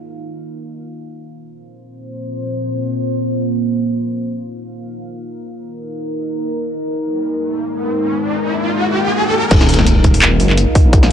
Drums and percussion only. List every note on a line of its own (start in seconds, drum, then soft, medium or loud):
9.51 kick loud
9.51 closed hi-hat medium
9.51 crash loud
9.61 snare medium
9.69 open hi-hat medium
9.74 closed hi-hat medium
9.79 snare soft
9.86 closed hi-hat medium
10.04 kick medium
10.04 closed hi-hat medium
10.14 open hi-hat medium
10.22 clap loud
10.22 closed hi-hat medium
10.40 open hi-hat medium
10.50 clap soft
10.57 closed hi-hat medium
10.75 kick loud
10.75 open hi-hat medium
10.93 kick loud
10.93 closed hi-hat medium
11.03 snare medium